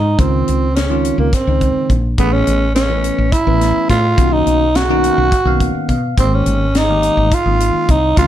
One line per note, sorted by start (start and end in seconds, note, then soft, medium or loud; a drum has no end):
0.00 0.15 G#2 medium
0.00 0.20 D#4 medium
0.18 0.44 C#2 medium
0.18 0.66 C#3 medium
0.18 0.66 D#3 medium
0.18 0.66 G#3 medium
0.18 0.77 C4 medium
0.18 0.66 C4 medium
0.18 0.67 F4 medium
0.18 kick loud
0.18 closed hi-hat medium
0.48 1.11 C#2 medium
0.48 closed hi-hat soft
0.75 1.18 C#4 medium
0.75 snare medium
0.75 closed hi-hat medium
0.90 1.28 D#3 medium
0.90 1.28 G#3 medium
0.90 1.28 C4 medium
0.90 1.28 C#4 medium
0.90 1.28 F4 medium
1.05 closed hi-hat medium
1.18 1.31 C#2 medium
1.18 1.36 A#3 medium
1.33 1.98 C4 medium
1.33 kick medium
1.33 snare soft
1.33 closed hi-hat medium
1.47 1.72 C#2 medium
1.47 1.95 C#3 medium
1.47 1.94 D#3 medium
1.47 1.94 G#3 medium
1.47 1.94 C4 medium
1.47 1.95 D#4 medium
1.61 kick medium
1.61 closed hi-hat medium
1.76 muted fretless electric bass stroke soft
1.89 2.15 A#1 medium
1.89 kick medium
1.89 closed hi-hat soft
2.18 2.43 A1 medium
2.18 2.65 E3 medium
2.18 2.65 A3 medium
2.18 2.66 B3 medium
2.18 2.34 B3 medium
2.18 2.66 C#4 medium
2.18 2.66 G#4 medium
2.18 kick loud
2.18 closed hi-hat medium
2.33 2.74 C#4 loud
2.47 3.10 A1 medium
2.47 closed hi-hat medium
2.75 3.34 C#4 medium
2.75 snare loud
2.75 closed hi-hat medium
2.89 3.27 E3 medium
2.89 3.27 A3 medium
2.89 3.27 B3 medium
2.89 3.28 C#4 medium
2.89 3.28 B4 medium
3.04 closed hi-hat medium
3.18 3.31 A1 medium
3.32 3.89 E4 loud
3.32 kick loud
3.32 closed hi-hat medium
3.46 3.72 A1 medium
3.46 3.94 E3 medium
3.46 3.94 A3 medium
3.46 3.94 B3 medium
3.46 3.94 C#4 medium
3.46 3.94 B4 medium
3.61 snare soft
3.61 closed hi-hat medium
3.76 muted fretless electric bass stroke soft
3.89 4.15 A2 medium
3.89 4.34 F4 medium
3.89 kick medium
3.89 snare soft
3.89 closed hi-hat medium
4.17 4.43 B1 loud
4.17 4.65 D#3 medium
4.17 4.65 A#3 medium
4.17 4.65 B3 medium
4.17 4.65 C#4 medium
4.17 4.65 F#4 medium
4.17 kick loud
4.17 closed hi-hat medium
4.33 4.78 D#4 loud
4.46 5.09 B1 medium
4.46 closed hi-hat medium
4.75 5.90 F#4 loud
4.75 snare medium
4.75 closed hi-hat medium
4.89 5.27 D#3 medium
4.89 5.27 A#3 medium
4.89 5.27 B3 medium
4.89 5.27 C#4 medium
4.89 5.28 D#4 loud
5.04 closed hi-hat medium
5.18 5.30 B1 medium
5.32 kick loud
5.32 closed hi-hat medium
5.45 5.71 B1 medium
5.45 5.93 D#3 medium
5.45 5.93 A#3 medium
5.45 5.94 B3 medium
5.45 5.94 C#4 medium
5.45 5.89 F5 medium
5.60 5.87 F#5 medium
5.60 kick medium
5.60 closed hi-hat soft
5.75 muted fretless electric bass stroke soft
5.88 6.14 B2 medium
5.88 6.16 F5 medium
5.88 kick medium
5.88 closed hi-hat soft
6.17 6.43 G#1 medium
6.17 6.64 D#3 medium
6.17 6.65 G#3 medium
6.17 6.65 A#3 medium
6.17 6.36 C4 medium
6.17 6.65 G4 medium
6.17 6.65 C5 medium
6.17 kick loud
6.17 closed hi-hat medium
6.34 6.79 C#4 medium
6.46 7.09 G#1 medium
6.46 closed hi-hat medium
6.75 7.35 D#4 medium
6.75 snare medium
6.75 closed hi-hat medium
6.89 7.26 D#3 medium
6.89 7.27 G#3 medium
6.89 7.27 A#3 medium
6.89 7.27 C4 medium
6.89 7.27 G4 medium
7.03 closed hi-hat medium
7.17 7.30 G#1 medium
7.31 7.92 F4 medium
7.31 kick medium
7.31 closed hi-hat medium
7.45 7.71 G#1 medium
7.45 7.93 D#3 medium
7.45 7.93 G#3 medium
7.45 7.93 A#3 medium
7.45 7.94 C4 medium
7.45 7.94 D#4 medium
7.60 closed hi-hat medium
7.75 muted fretless electric bass stroke soft
7.89 8.14 C2 medium
7.89 8.18 D#4 medium
7.89 kick medium
7.89 closed hi-hat medium
8.17 8.27 C#2 medium
8.17 8.27 D#3 medium
8.17 8.27 G#3 medium
8.17 8.27 C4 medium
8.17 8.27 C#4 medium
8.17 8.27 F4 loud
8.17 8.27 F4 medium
8.17 kick medium
8.17 closed hi-hat medium